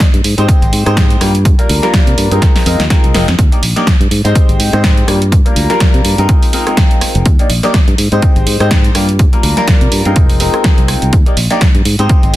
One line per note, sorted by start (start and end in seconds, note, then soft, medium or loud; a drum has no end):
0.00 kick loud
0.00 snare loud
0.00 closed hi-hat loud
0.14 0.21 G2 loud
0.14 closed hi-hat soft
0.24 0.34 G#2 loud
0.24 open hi-hat loud
0.37 0.45 G#2 loud
0.37 0.83 G#3 medium
0.37 0.83 C4 medium
0.37 0.83 D#4 medium
0.37 0.83 G4 medium
0.37 0.83 C5 loud
0.37 closed hi-hat soft
0.48 muted fingered electric bass stroke soft
0.48 kick loud
0.48 closed hi-hat medium
0.62 0.70 G#1 loud
0.62 closed hi-hat soft
0.73 0.82 G#2 medium
0.73 open hi-hat loud
0.86 1.16 G#2 loud
0.86 1.18 G#3 medium
0.86 1.18 C4 medium
0.86 1.18 D#4 medium
0.86 1.18 G4 medium
0.86 1.19 C5 loud
0.86 cross-stick medium
0.86 closed hi-hat soft
0.97 kick loud
0.97 snare loud
0.97 closed hi-hat medium
1.10 closed hi-hat soft
1.20 1.52 G2 medium
1.20 1.30 G3 medium
1.20 1.30 A#3 medium
1.20 1.30 D4 medium
1.20 1.30 F4 medium
1.20 1.30 G4 loud
1.20 cross-stick medium
1.20 open hi-hat loud
1.35 closed hi-hat soft
1.45 kick loud
1.45 closed hi-hat loud
1.58 1.79 G3 medium
1.58 1.80 A#3 medium
1.58 1.80 D4 medium
1.58 1.80 F4 medium
1.58 1.80 A#4 medium
1.58 closed hi-hat soft
1.69 1.79 D2 loud
1.69 open hi-hat loud
1.82 2.28 G3 loud
1.82 2.28 A#3 medium
1.82 2.28 D4 medium
1.82 2.28 F4 medium
1.82 2.28 A#4 loud
1.82 snare soft
1.82 closed hi-hat soft
1.94 kick loud
1.94 snare loud
1.94 closed hi-hat loud
2.07 2.15 C3 loud
2.07 closed hi-hat soft
2.18 2.27 G2 loud
2.18 open hi-hat loud
2.31 2.39 G2 medium
2.31 2.63 G#3 medium
2.31 2.63 C4 medium
2.31 2.64 D#4 medium
2.31 2.64 F4 medium
2.31 2.64 A#4 medium
2.31 closed hi-hat soft
2.42 kick loud
2.42 snare medium
2.42 closed hi-hat medium
2.56 muted fingered electric bass stroke soft
2.56 snare medium
2.56 open hi-hat medium
2.66 2.76 F2 loud
2.66 2.80 G#3 medium
2.66 2.80 C4 medium
2.66 2.80 D#4 medium
2.66 2.80 F4 medium
2.66 2.81 A#4 medium
2.66 open hi-hat loud
2.80 2.87 D#2 medium
2.80 snare medium
2.80 closed hi-hat soft
2.90 3.12 G#3 medium
2.90 3.12 C4 medium
2.90 3.12 D#4 medium
2.90 3.12 F4 medium
2.90 3.12 A#4 medium
2.90 kick loud
2.90 snare medium
2.90 closed hi-hat loud
3.04 3.11 C2 medium
3.04 closed hi-hat soft
3.14 3.24 F1 loud
3.14 3.23 G#3 loud
3.14 3.23 C4 medium
3.14 3.23 D#4 medium
3.14 3.23 F4 medium
3.14 3.24 A#4 loud
3.14 snare loud
3.14 open hi-hat loud
3.28 3.36 F2 loud
3.28 snare medium
3.28 closed hi-hat soft
3.39 3.48 D#2 loud
3.39 kick loud
3.39 closed hi-hat loud
3.52 3.59 A#3 medium
3.52 3.59 D4 medium
3.52 3.59 D#4 medium
3.52 3.59 G4 medium
3.52 3.59 D5 medium
3.52 closed hi-hat soft
3.63 3.72 A#1 loud
3.63 open hi-hat loud
3.76 3.88 A#3 loud
3.76 3.88 D4 medium
3.76 3.88 D#4 medium
3.76 3.88 G4 medium
3.76 3.88 D5 loud
3.76 snare soft
3.76 closed hi-hat soft
3.87 kick loud
3.87 snare loud
3.87 closed hi-hat loud
4.00 4.08 G2 loud
4.00 closed hi-hat soft
4.11 4.21 G#2 loud
4.11 open hi-hat loud
4.24 4.32 G#2 medium
4.24 4.70 G#3 medium
4.24 4.70 C4 medium
4.24 4.70 D#4 medium
4.24 4.70 G4 medium
4.24 4.70 C5 loud
4.24 closed hi-hat soft
4.35 muted fingered electric bass stroke soft
4.35 kick loud
4.35 closed hi-hat loud
4.49 4.57 G#1 loud
4.49 closed hi-hat soft
4.60 4.69 G#2 medium
4.60 open hi-hat loud
4.73 5.03 G#2 loud
4.73 5.05 G#3 medium
4.73 5.05 C4 medium
4.73 5.05 D#4 medium
4.73 5.06 G4 medium
4.73 5.06 C5 loud
4.73 cross-stick medium
4.73 closed hi-hat soft
4.84 kick loud
4.84 snare loud
4.84 closed hi-hat loud
4.97 closed hi-hat soft
5.07 5.39 G2 medium
5.07 5.17 G3 medium
5.07 5.17 A#3 medium
5.07 5.17 D4 medium
5.07 5.17 F4 medium
5.07 5.17 G4 loud
5.07 cross-stick medium
5.07 open hi-hat loud
5.22 closed hi-hat soft
5.32 kick loud
5.32 closed hi-hat medium
5.45 5.66 G3 medium
5.45 5.67 A#3 medium
5.45 5.67 D4 medium
5.45 5.67 F4 medium
5.45 5.67 A#4 medium
5.45 closed hi-hat soft
5.56 5.66 D2 loud
5.56 open hi-hat loud
5.70 6.15 G3 loud
5.70 6.15 A#3 medium
5.70 6.15 D4 medium
5.70 6.15 F4 medium
5.70 6.15 A#4 loud
5.70 snare soft
5.70 closed hi-hat soft
5.80 kick loud
5.80 snare loud
5.80 closed hi-hat medium
5.94 6.02 C3 loud
5.94 closed hi-hat soft
6.05 6.14 G2 loud
6.05 open hi-hat loud
6.18 6.26 G2 loud
6.18 6.50 G#3 medium
6.18 6.51 C4 medium
6.18 6.51 D#4 medium
6.18 6.51 F4 medium
6.18 6.51 A#4 medium
6.18 closed hi-hat soft
6.29 kick loud
6.29 closed hi-hat medium
6.43 open hi-hat medium
6.53 6.63 G#3 medium
6.53 6.63 C4 medium
6.53 6.64 D#4 medium
6.53 6.64 F4 medium
6.53 6.64 A#4 medium
6.53 open hi-hat loud
6.66 7.24 G#3 medium
6.66 7.24 C4 medium
6.66 7.25 D#4 medium
6.66 7.25 F4 medium
6.66 7.25 A#4 medium
6.66 cross-stick medium
6.66 closed hi-hat soft
6.77 kick loud
6.77 snare loud
6.77 closed hi-hat loud
6.91 closed hi-hat soft
7.01 muted fingered electric bass stroke soft
7.01 cross-stick medium
7.01 open hi-hat loud
7.15 7.23 F1 loud
7.15 closed hi-hat soft
7.26 7.35 D#2 loud
7.26 kick loud
7.26 closed hi-hat medium
7.39 7.46 A#3 medium
7.39 7.46 D4 medium
7.39 7.46 D#4 medium
7.39 7.47 G4 medium
7.39 7.47 D5 medium
7.39 closed hi-hat soft
7.50 7.59 A#1 loud
7.50 open hi-hat loud
7.63 7.75 A#3 loud
7.63 7.75 D4 medium
7.63 7.75 D#4 loud
7.63 7.75 G4 medium
7.63 7.75 D5 loud
7.63 snare soft
7.63 closed hi-hat soft
7.74 kick loud
7.74 snare loud
7.74 closed hi-hat medium
7.88 7.95 G2 loud
7.88 closed hi-hat soft
7.98 8.08 G#2 loud
7.98 open hi-hat loud
8.12 8.19 G#2 loud
8.12 8.57 G#3 medium
8.12 8.57 C4 medium
8.12 8.57 D#4 medium
8.12 8.57 G4 medium
8.12 8.57 C5 loud
8.12 closed hi-hat soft
8.22 kick loud
8.22 closed hi-hat medium
8.36 8.44 G#1 loud
8.36 closed hi-hat soft
8.46 8.56 G#2 loud
8.46 open hi-hat loud
8.60 8.90 G#2 loud
8.60 8.92 G#3 loud
8.60 8.93 C4 medium
8.60 8.93 D#4 medium
8.60 8.93 G4 medium
8.60 8.93 C5 loud
8.60 cross-stick medium
8.60 closed hi-hat soft
8.71 kick loud
8.71 snare loud
8.71 closed hi-hat medium
8.84 closed hi-hat soft
8.95 9.26 G2 medium
8.95 9.04 G3 medium
8.95 9.04 A#3 medium
8.95 9.04 D4 medium
8.95 9.04 F4 medium
8.95 9.04 G4 loud
8.95 cross-stick medium
8.95 open hi-hat loud
9.09 closed hi-hat soft
9.19 kick loud
9.19 closed hi-hat medium
9.32 9.54 G3 medium
9.32 9.54 A#3 medium
9.32 9.54 D4 medium
9.32 9.54 F4 medium
9.32 9.54 A#4 medium
9.32 closed hi-hat soft
9.43 9.53 D2 loud
9.43 open hi-hat loud
9.57 10.02 G3 loud
9.57 10.02 A#3 medium
9.57 10.02 D4 medium
9.57 10.02 F4 medium
9.57 10.02 A#4 loud
9.57 snare soft
9.57 closed hi-hat soft
9.68 kick loud
9.68 snare loud
9.68 closed hi-hat medium
9.81 9.89 C3 loud
9.81 closed hi-hat soft
9.92 10.01 G2 loud
9.92 open hi-hat loud
10.05 10.13 G2 medium
10.05 10.38 G#3 medium
10.05 10.38 C4 medium
10.05 10.38 D#4 medium
10.05 10.38 F4 medium
10.05 10.38 A#4 medium
10.05 closed hi-hat soft
10.16 10.48 F1 medium
10.16 kick loud
10.16 closed hi-hat medium
10.29 open hi-hat medium
10.40 10.50 G#3 medium
10.40 10.51 C4 medium
10.40 10.51 D#4 medium
10.40 10.51 F4 medium
10.40 10.51 A#4 medium
10.40 open hi-hat loud
10.53 11.11 G#3 medium
10.53 11.11 C4 medium
10.53 11.12 D#4 medium
10.53 11.12 F4 medium
10.53 11.12 A#4 medium
10.53 cross-stick medium
10.53 closed hi-hat soft
10.64 kick loud
10.64 snare loud
10.64 closed hi-hat medium
10.78 10.94 C2 medium
10.78 closed hi-hat soft
10.88 cross-stick medium
10.88 open hi-hat loud
11.02 11.10 C2 loud
11.02 closed hi-hat soft
11.13 11.23 D#2 loud
11.13 kick loud
11.13 closed hi-hat medium
11.26 11.33 A#3 medium
11.26 11.33 D4 medium
11.26 11.33 D#4 medium
11.26 11.34 G4 medium
11.26 11.34 D5 medium
11.26 closed hi-hat soft
11.37 11.47 A#1 loud
11.37 open hi-hat loud
11.50 11.62 A#3 loud
11.50 11.62 D4 medium
11.50 11.62 D#4 medium
11.50 11.62 G4 medium
11.50 11.62 D5 loud
11.50 snare soft
11.50 closed hi-hat soft
11.61 kick loud
11.61 snare loud
11.61 closed hi-hat medium
11.75 11.82 G2 loud
11.75 closed hi-hat soft
11.85 11.95 G#2 loud
11.85 open hi-hat loud
11.99 12.07 G#2 medium
11.99 12.36 G#3 medium
11.99 12.36 C4 medium
11.99 12.36 D#4 medium
11.99 12.36 G4 medium
11.99 12.36 C5 loud
11.99 closed hi-hat soft
12.09 muted fingered electric bass stroke soft
12.09 kick loud
12.09 closed hi-hat medium
12.23 12.31 G#1 loud
12.23 closed hi-hat soft